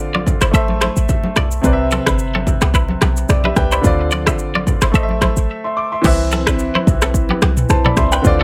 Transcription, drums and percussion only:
0.15 high conga
0.27 kick, low conga, shaker
0.41 finger snap, cross-stick, shaker
0.54 kick, shaker
0.68 high conga
0.81 finger snap, cross-stick, high conga, shaker
0.96 shaker
1.09 kick, low conga, shaker
1.23 high conga
1.36 finger snap, cross-stick, low conga, shaker
1.51 shaker
1.64 kick, shaker
1.91 high conga, shaker
2.06 finger snap, kick, cross-stick, shaker
2.19 shaker
2.35 high conga
2.47 kick, low conga, shaker
2.61 finger snap, cross-stick, shaker
2.74 kick, shaker
2.88 high conga
3.01 finger snap, cross-stick, high conga, shaker
3.17 shaker
3.29 finger snap, cross-stick, low conga, shaker
3.44 high conga
3.56 finger snap, kick, cross-stick, low conga, shaker
3.72 shaker
3.84 kick, shaker
4.11 high conga, shaker
4.27 finger snap, kick, cross-stick, shaker
4.39 shaker
4.55 high conga
4.67 kick, low conga, shaker
4.82 finger snap, cross-stick, shaker
4.94 kick, shaker
5.09 high conga
5.21 finger snap, kick, cross-stick, high conga, shaker
5.37 shaker
6.04 kick, crash, shaker
6.31 high conga, shaker
6.47 finger snap, kick, cross-stick, shaker
6.59 shaker
6.75 high conga
6.87 kick, low conga, shaker
7.02 finger snap, cross-stick, shaker
7.14 kick, shaker
7.29 high conga
7.42 finger snap, cross-stick, high conga, shaker
7.57 mid tom, shaker
7.69 finger snap, cross-stick, low conga, shaker
7.85 mid tom, high conga
7.97 finger snap, kick, cross-stick, low conga, shaker
8.12 shaker
8.25 kick, shaker

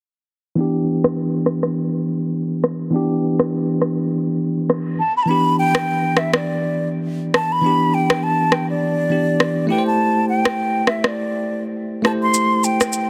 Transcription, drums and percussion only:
1.04 cross-stick
1.46 cross-stick
1.63 cross-stick
2.64 cross-stick
3.40 cross-stick
3.82 cross-stick
4.70 cross-stick
5.75 cross-stick
6.17 cross-stick
6.34 cross-stick
7.34 cross-stick
8.10 cross-stick
8.52 cross-stick
9.40 cross-stick
10.45 cross-stick
10.87 cross-stick
11.04 cross-stick
12.05 cross-stick
12.34 shaker
12.64 shaker
12.81 cross-stick, shaker
12.93 shaker

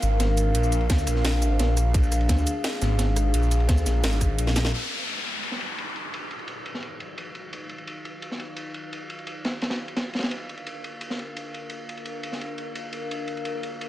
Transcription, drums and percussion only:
0.02 closed hi-hat, ride, shaker
0.20 snare, closed hi-hat, ride
0.37 closed hi-hat, ride, shaker
0.55 closed hi-hat, ride
0.63 shaker
0.72 closed hi-hat, ride, shaker
0.81 ride
0.89 kick, snare, closed hi-hat, ride
0.98 shaker
1.07 cross-stick, closed hi-hat, ride, shaker
1.16 snare
1.25 snare, closed hi-hat, ride
1.42 closed hi-hat, ride, shaker
1.59 snare, closed hi-hat, ride
1.77 cross-stick, closed hi-hat, ride, shaker
1.94 kick, closed hi-hat, ride
2.03 shaker
2.12 cross-stick, closed hi-hat, ride, shaker
2.21 ride
2.29 kick, snare, closed hi-hat, ride
2.38 shaker
2.47 closed hi-hat, ride, shaker
2.64 snare, closed hi-hat, ride
2.73 snare
2.81 snare, closed hi-hat, ride, shaker
2.98 snare, closed hi-hat, ride
3.16 cross-stick, closed hi-hat, ride, shaker
3.34 closed hi-hat, ride
3.43 shaker
3.51 closed hi-hat, ride, shaker
3.60 ride
3.69 kick, snare, closed hi-hat, ride
3.77 shaker
3.86 snare, closed hi-hat, ride, shaker
4.04 snare, closed hi-hat, ride
4.12 snare, shaker
4.21 kick, cross-stick, closed hi-hat, ride, shaker
4.39 closed hi-hat, ride
4.47 snare, shaker
4.56 snare, closed hi-hat, ride, shaker
4.65 snare
4.74 ride
4.91 ride
5.00 ride
5.09 ride
5.26 ride
5.43 ride
5.52 snare
5.61 ride
5.78 ride
5.96 ride
6.14 ride
6.31 ride
6.39 ride
6.48 ride
6.66 ride
6.74 snare
6.82 ride
7.00 ride
7.18 ride
7.35 ride
7.53 ride
7.69 ride
7.78 ride
7.87 ride
8.05 ride
8.22 ride
8.31 snare
8.39 ride
8.56 ride
8.74 ride
8.93 ride
9.10 ride
9.19 ride
9.27 ride
9.45 snare, ride
9.61 snare, ride
9.70 snare, ride
9.88 ride
9.96 snare, ride
10.13 snare, ride
10.19 snare, ride
10.23 snare, ride
10.31 ride
10.49 ride
10.57 ride
10.67 ride
10.84 ride
11.01 ride
11.10 snare
11.19 ride
11.37 ride
11.54 ride
11.70 ride
11.89 ride
11.97 ride
12.05 ride
12.23 ride
12.32 snare
12.41 ride
12.58 ride
12.75 ride
12.93 ride
13.11 ride
13.28 ride
13.37 ride
13.45 ride
13.63 ride
13.81 ride

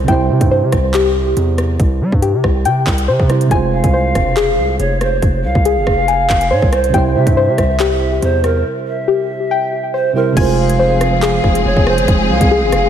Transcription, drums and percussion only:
0.08 kick, closed hi-hat
0.41 kick, closed hi-hat
0.72 kick, cross-stick, closed hi-hat
0.94 clap, closed hi-hat
1.37 closed hi-hat
1.58 cross-stick, closed hi-hat
1.80 kick, closed hi-hat
2.12 kick
2.22 closed hi-hat
2.44 kick, cross-stick
2.65 closed hi-hat
2.87 kick, clap
2.98 closed hi-hat
3.20 kick
3.30 cross-stick, closed hi-hat
3.41 closed hi-hat
3.51 kick, closed hi-hat
3.84 kick, closed hi-hat
4.15 kick, cross-stick, closed hi-hat
4.37 clap, closed hi-hat
4.80 closed hi-hat
5.01 cross-stick, closed hi-hat
5.22 kick, closed hi-hat
5.55 kick
5.65 closed hi-hat
5.87 kick, cross-stick
6.08 closed hi-hat
6.30 kick, clap
6.41 closed hi-hat
6.62 kick
6.73 cross-stick, closed hi-hat
6.84 closed hi-hat
6.94 kick, closed hi-hat
7.27 kick, closed hi-hat
7.58 kick, cross-stick, closed hi-hat
7.80 clap, closed hi-hat
8.22 closed hi-hat
8.44 cross-stick, closed hi-hat
10.37 kick, closed hi-hat, crash
10.70 closed hi-hat
11.01 cross-stick, closed hi-hat
11.22 clap, closed hi-hat
11.44 kick
11.55 closed hi-hat
11.77 kick
11.87 cross-stick
11.98 closed hi-hat
12.08 kick, closed hi-hat
12.41 kick, closed hi-hat
12.72 cross-stick, closed hi-hat

